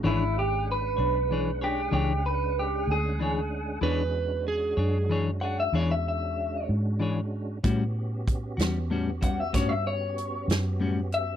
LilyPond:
<<
  \new Staff \with { instrumentName = "Clean electric guitar" } { \time 12/8 \key e \mixolydian \tempo 4. = 63 e'8 g'8 b'4. g'8 g'8 b'8 g'8 gis'4.~ | gis'8 r2 fis''16 e''16 cis''16 e''16 e''4 r4. | r2 r8 fis''16 e''16 cis''16 e''16 cis''4 r4 e''8 | }
  \new Staff \with { instrumentName = "Electric slide guitar" } { \time 12/8 \key e \mixolydian r1. | b'4 gis'4~ gis'16 r2. r8. | r1. | }
  \new Staff \with { instrumentName = "Clean electric guitar" } { \time 12/8 \key e \mixolydian <e d' gis' cis''>8 r4 <d' gis' cis''>8 <e d' gis' cis''>8 <d' gis' cis''>8 <e d' gis' cis''>8 r4. <e d' gis' cis''>8 r8 | <e d' gis' cis''>8 r4 <d' gis' cis''>8 <e d' gis' cis''>8 <d' gis' cis''>8 <e d' gis' cis''>8 r4. <e d' gis' cis''>8 r8 | <a, g cis' fis'>8 r4 <g cis' fis'>8 <a, g cis' fis'>8 <g cis' fis'>8 <a, g cis' fis'>8 r4. <a, g cis' fis'>8 r8 | }
  \new Staff \with { instrumentName = "Tonewheel organ" } { \time 12/8 \key e \mixolydian <gis cis' d' fis''>1. | <gis cis' d' fis'>1. | <b cis' fis' g'>1. | }
  \new Staff \with { instrumentName = "Fingered electric bass" } { \clef bass \time 12/8 \key e \mixolydian gis,,4. b,,4. cis,4. d,4. | e,4. fis,4. e,4. gis,4. | a,4. e,4. g,4. fis,4. | }
  \new DrumStaff \with { instrumentName = "Drums" } \drummode { \time 12/8 r4. r4. r4. r4. | r4. r4. r4. r4. | <hh bd>4 <hh bd>8 <hh sn>4 <hh bd>8 <hh bd sn>4 hh8 <hh sn>4 hh8 | }
>>